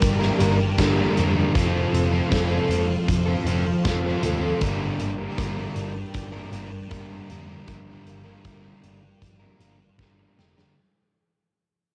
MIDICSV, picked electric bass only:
0, 0, Header, 1, 2, 480
1, 0, Start_track
1, 0, Key_signature, -2, "minor"
1, 0, Tempo, 767263
1, 968, Time_signature, 4, 2, 24, 8
1, 7474, End_track
2, 0, Start_track
2, 0, Title_t, "Picked electric bass"
2, 0, Program_c, 0, 34
2, 12, Note_on_c, 0, 31, 81
2, 181, Note_off_c, 0, 31, 0
2, 257, Note_on_c, 0, 31, 86
2, 424, Note_off_c, 0, 31, 0
2, 492, Note_on_c, 0, 31, 89
2, 660, Note_off_c, 0, 31, 0
2, 738, Note_on_c, 0, 41, 86
2, 903, Note_off_c, 0, 41, 0
2, 973, Note_on_c, 0, 29, 97
2, 1140, Note_off_c, 0, 29, 0
2, 1207, Note_on_c, 0, 29, 80
2, 1376, Note_off_c, 0, 29, 0
2, 1448, Note_on_c, 0, 29, 88
2, 1616, Note_off_c, 0, 29, 0
2, 1680, Note_on_c, 0, 29, 82
2, 1850, Note_off_c, 0, 29, 0
2, 1927, Note_on_c, 0, 29, 89
2, 2095, Note_off_c, 0, 29, 0
2, 2154, Note_on_c, 0, 29, 86
2, 2326, Note_off_c, 0, 29, 0
2, 2409, Note_on_c, 0, 29, 82
2, 2576, Note_off_c, 0, 29, 0
2, 2647, Note_on_c, 0, 39, 91
2, 2815, Note_off_c, 0, 39, 0
2, 2884, Note_on_c, 0, 31, 92
2, 3053, Note_off_c, 0, 31, 0
2, 3121, Note_on_c, 0, 31, 83
2, 3291, Note_off_c, 0, 31, 0
2, 3370, Note_on_c, 0, 31, 84
2, 3537, Note_off_c, 0, 31, 0
2, 3603, Note_on_c, 0, 31, 86
2, 3772, Note_off_c, 0, 31, 0
2, 3843, Note_on_c, 0, 31, 87
2, 4012, Note_off_c, 0, 31, 0
2, 4081, Note_on_c, 0, 31, 85
2, 4251, Note_off_c, 0, 31, 0
2, 4327, Note_on_c, 0, 31, 86
2, 4495, Note_off_c, 0, 31, 0
2, 4569, Note_on_c, 0, 41, 85
2, 4737, Note_off_c, 0, 41, 0
2, 4801, Note_on_c, 0, 31, 94
2, 4972, Note_off_c, 0, 31, 0
2, 5049, Note_on_c, 0, 31, 85
2, 5217, Note_off_c, 0, 31, 0
2, 5286, Note_on_c, 0, 31, 79
2, 5456, Note_off_c, 0, 31, 0
2, 5530, Note_on_c, 0, 31, 80
2, 5698, Note_off_c, 0, 31, 0
2, 5768, Note_on_c, 0, 31, 90
2, 5938, Note_off_c, 0, 31, 0
2, 6005, Note_on_c, 0, 31, 84
2, 6176, Note_off_c, 0, 31, 0
2, 6249, Note_on_c, 0, 31, 87
2, 6419, Note_off_c, 0, 31, 0
2, 6496, Note_on_c, 0, 29, 90
2, 6664, Note_off_c, 0, 29, 0
2, 7474, End_track
0, 0, End_of_file